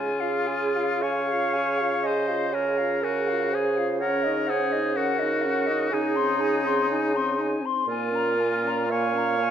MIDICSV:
0, 0, Header, 1, 6, 480
1, 0, Start_track
1, 0, Key_signature, -5, "major"
1, 0, Tempo, 1094891
1, 447, Tempo, 1027397
1, 927, Tempo, 972447
1, 1898, Time_signature, 4, 2, 24, 8
1, 3807, Tempo, 1023891
1, 4568, End_track
2, 0, Start_track
2, 0, Title_t, "Flute"
2, 0, Program_c, 0, 73
2, 0, Note_on_c, 0, 80, 50
2, 88, Note_on_c, 0, 77, 44
2, 94, Note_off_c, 0, 80, 0
2, 205, Note_on_c, 0, 80, 45
2, 212, Note_off_c, 0, 77, 0
2, 333, Note_on_c, 0, 77, 45
2, 340, Note_off_c, 0, 80, 0
2, 446, Note_off_c, 0, 77, 0
2, 449, Note_on_c, 0, 80, 43
2, 569, Note_on_c, 0, 77, 46
2, 576, Note_off_c, 0, 80, 0
2, 686, Note_on_c, 0, 80, 47
2, 693, Note_off_c, 0, 77, 0
2, 801, Note_on_c, 0, 77, 49
2, 808, Note_off_c, 0, 80, 0
2, 920, Note_off_c, 0, 77, 0
2, 923, Note_on_c, 0, 80, 46
2, 1038, Note_on_c, 0, 77, 41
2, 1045, Note_off_c, 0, 80, 0
2, 1164, Note_on_c, 0, 80, 45
2, 1171, Note_off_c, 0, 77, 0
2, 1286, Note_on_c, 0, 77, 49
2, 1294, Note_off_c, 0, 80, 0
2, 1407, Note_off_c, 0, 77, 0
2, 1410, Note_on_c, 0, 80, 45
2, 1533, Note_on_c, 0, 77, 42
2, 1540, Note_off_c, 0, 80, 0
2, 1658, Note_on_c, 0, 80, 44
2, 1666, Note_off_c, 0, 77, 0
2, 1778, Note_on_c, 0, 77, 47
2, 1785, Note_off_c, 0, 80, 0
2, 1885, Note_off_c, 0, 77, 0
2, 1888, Note_on_c, 0, 78, 53
2, 2004, Note_on_c, 0, 75, 46
2, 2012, Note_off_c, 0, 78, 0
2, 2121, Note_on_c, 0, 78, 48
2, 2128, Note_off_c, 0, 75, 0
2, 2245, Note_on_c, 0, 75, 48
2, 2252, Note_off_c, 0, 78, 0
2, 2354, Note_off_c, 0, 75, 0
2, 2357, Note_on_c, 0, 78, 51
2, 2477, Note_on_c, 0, 75, 47
2, 2484, Note_off_c, 0, 78, 0
2, 2589, Note_on_c, 0, 78, 54
2, 2596, Note_off_c, 0, 75, 0
2, 2711, Note_on_c, 0, 75, 52
2, 2719, Note_off_c, 0, 78, 0
2, 2830, Note_off_c, 0, 75, 0
2, 2832, Note_on_c, 0, 80, 53
2, 2955, Note_on_c, 0, 84, 48
2, 2963, Note_off_c, 0, 80, 0
2, 3076, Note_on_c, 0, 80, 49
2, 3084, Note_off_c, 0, 84, 0
2, 3202, Note_on_c, 0, 84, 48
2, 3209, Note_off_c, 0, 80, 0
2, 3322, Note_off_c, 0, 84, 0
2, 3329, Note_on_c, 0, 80, 49
2, 3450, Note_on_c, 0, 84, 50
2, 3457, Note_off_c, 0, 80, 0
2, 3573, Note_on_c, 0, 80, 46
2, 3580, Note_off_c, 0, 84, 0
2, 3694, Note_on_c, 0, 84, 43
2, 3702, Note_off_c, 0, 80, 0
2, 3810, Note_off_c, 0, 84, 0
2, 3815, Note_on_c, 0, 80, 55
2, 3932, Note_on_c, 0, 82, 47
2, 3939, Note_off_c, 0, 80, 0
2, 4051, Note_on_c, 0, 80, 51
2, 4058, Note_off_c, 0, 82, 0
2, 4177, Note_on_c, 0, 82, 46
2, 4184, Note_off_c, 0, 80, 0
2, 4288, Note_off_c, 0, 82, 0
2, 4291, Note_on_c, 0, 80, 46
2, 4411, Note_on_c, 0, 82, 51
2, 4418, Note_off_c, 0, 80, 0
2, 4517, Note_on_c, 0, 80, 51
2, 4524, Note_off_c, 0, 82, 0
2, 4568, Note_off_c, 0, 80, 0
2, 4568, End_track
3, 0, Start_track
3, 0, Title_t, "Clarinet"
3, 0, Program_c, 1, 71
3, 0, Note_on_c, 1, 68, 72
3, 449, Note_on_c, 1, 77, 86
3, 456, Note_off_c, 1, 68, 0
3, 923, Note_on_c, 1, 75, 75
3, 931, Note_off_c, 1, 77, 0
3, 1164, Note_on_c, 1, 73, 70
3, 1171, Note_off_c, 1, 75, 0
3, 1407, Note_on_c, 1, 70, 82
3, 1415, Note_off_c, 1, 73, 0
3, 1657, Note_on_c, 1, 72, 68
3, 1664, Note_off_c, 1, 70, 0
3, 1892, Note_off_c, 1, 72, 0
3, 1895, Note_on_c, 1, 73, 83
3, 2130, Note_on_c, 1, 72, 77
3, 2138, Note_off_c, 1, 73, 0
3, 2369, Note_on_c, 1, 70, 78
3, 2376, Note_off_c, 1, 72, 0
3, 2838, Note_on_c, 1, 68, 85
3, 2845, Note_off_c, 1, 70, 0
3, 3666, Note_off_c, 1, 68, 0
3, 3805, Note_on_c, 1, 70, 81
3, 4290, Note_on_c, 1, 77, 87
3, 4297, Note_off_c, 1, 70, 0
3, 4568, Note_off_c, 1, 77, 0
3, 4568, End_track
4, 0, Start_track
4, 0, Title_t, "Oboe"
4, 0, Program_c, 2, 68
4, 0, Note_on_c, 2, 65, 70
4, 448, Note_on_c, 2, 73, 75
4, 455, Note_off_c, 2, 65, 0
4, 937, Note_on_c, 2, 72, 65
4, 944, Note_off_c, 2, 73, 0
4, 1174, Note_on_c, 2, 70, 65
4, 1181, Note_off_c, 2, 72, 0
4, 1416, Note_on_c, 2, 66, 63
4, 1423, Note_off_c, 2, 70, 0
4, 1669, Note_on_c, 2, 68, 54
4, 1676, Note_off_c, 2, 66, 0
4, 1831, Note_off_c, 2, 68, 0
4, 1900, Note_on_c, 2, 70, 67
4, 2137, Note_on_c, 2, 68, 71
4, 2145, Note_off_c, 2, 70, 0
4, 2369, Note_on_c, 2, 66, 68
4, 2376, Note_off_c, 2, 68, 0
4, 2848, Note_on_c, 2, 63, 79
4, 2855, Note_off_c, 2, 66, 0
4, 3671, Note_off_c, 2, 63, 0
4, 3806, Note_on_c, 2, 65, 76
4, 4274, Note_off_c, 2, 65, 0
4, 4291, Note_on_c, 2, 73, 73
4, 4568, Note_off_c, 2, 73, 0
4, 4568, End_track
5, 0, Start_track
5, 0, Title_t, "French horn"
5, 0, Program_c, 3, 60
5, 0, Note_on_c, 3, 68, 55
5, 94, Note_on_c, 3, 65, 46
5, 100, Note_off_c, 3, 68, 0
5, 210, Note_on_c, 3, 68, 42
5, 217, Note_off_c, 3, 65, 0
5, 335, Note_on_c, 3, 65, 44
5, 341, Note_off_c, 3, 68, 0
5, 451, Note_off_c, 3, 65, 0
5, 460, Note_on_c, 3, 68, 52
5, 591, Note_on_c, 3, 65, 46
5, 598, Note_off_c, 3, 68, 0
5, 702, Note_on_c, 3, 68, 43
5, 709, Note_off_c, 3, 65, 0
5, 821, Note_on_c, 3, 65, 39
5, 828, Note_off_c, 3, 68, 0
5, 932, Note_off_c, 3, 65, 0
5, 939, Note_on_c, 3, 68, 56
5, 1056, Note_on_c, 3, 65, 47
5, 1063, Note_off_c, 3, 68, 0
5, 1172, Note_on_c, 3, 68, 43
5, 1179, Note_off_c, 3, 65, 0
5, 1298, Note_on_c, 3, 65, 45
5, 1305, Note_off_c, 3, 68, 0
5, 1419, Note_off_c, 3, 65, 0
5, 1425, Note_on_c, 3, 68, 50
5, 1549, Note_on_c, 3, 65, 47
5, 1557, Note_off_c, 3, 68, 0
5, 1664, Note_on_c, 3, 68, 50
5, 1672, Note_off_c, 3, 65, 0
5, 1786, Note_on_c, 3, 65, 47
5, 1793, Note_off_c, 3, 68, 0
5, 1901, Note_off_c, 3, 65, 0
5, 1912, Note_on_c, 3, 61, 57
5, 2023, Note_on_c, 3, 63, 49
5, 2031, Note_off_c, 3, 61, 0
5, 2142, Note_on_c, 3, 61, 45
5, 2149, Note_off_c, 3, 63, 0
5, 2252, Note_on_c, 3, 63, 49
5, 2260, Note_off_c, 3, 61, 0
5, 2367, Note_off_c, 3, 63, 0
5, 2370, Note_on_c, 3, 61, 49
5, 2494, Note_on_c, 3, 63, 51
5, 2502, Note_off_c, 3, 61, 0
5, 2609, Note_on_c, 3, 61, 54
5, 2616, Note_off_c, 3, 63, 0
5, 2728, Note_on_c, 3, 63, 47
5, 2735, Note_off_c, 3, 61, 0
5, 2841, Note_off_c, 3, 63, 0
5, 2844, Note_on_c, 3, 63, 59
5, 2962, Note_on_c, 3, 60, 48
5, 2969, Note_off_c, 3, 63, 0
5, 3073, Note_on_c, 3, 63, 49
5, 3080, Note_off_c, 3, 60, 0
5, 3192, Note_on_c, 3, 60, 50
5, 3200, Note_off_c, 3, 63, 0
5, 3317, Note_off_c, 3, 60, 0
5, 3321, Note_on_c, 3, 63, 58
5, 3446, Note_on_c, 3, 60, 52
5, 3454, Note_off_c, 3, 63, 0
5, 3560, Note_on_c, 3, 63, 55
5, 3568, Note_off_c, 3, 60, 0
5, 3677, Note_on_c, 3, 60, 49
5, 3684, Note_off_c, 3, 63, 0
5, 3796, Note_off_c, 3, 60, 0
5, 3799, Note_on_c, 3, 58, 56
5, 3914, Note_on_c, 3, 61, 49
5, 3921, Note_off_c, 3, 58, 0
5, 4032, Note_on_c, 3, 58, 47
5, 4039, Note_off_c, 3, 61, 0
5, 4160, Note_on_c, 3, 61, 49
5, 4167, Note_off_c, 3, 58, 0
5, 4280, Note_off_c, 3, 61, 0
5, 4283, Note_on_c, 3, 58, 53
5, 4398, Note_on_c, 3, 61, 46
5, 4405, Note_off_c, 3, 58, 0
5, 4511, Note_on_c, 3, 58, 47
5, 4518, Note_off_c, 3, 61, 0
5, 4568, Note_off_c, 3, 58, 0
5, 4568, End_track
6, 0, Start_track
6, 0, Title_t, "Bassoon"
6, 0, Program_c, 4, 70
6, 0, Note_on_c, 4, 49, 56
6, 2821, Note_off_c, 4, 49, 0
6, 2845, Note_on_c, 4, 49, 66
6, 3653, Note_off_c, 4, 49, 0
6, 3803, Note_on_c, 4, 46, 65
6, 4568, Note_off_c, 4, 46, 0
6, 4568, End_track
0, 0, End_of_file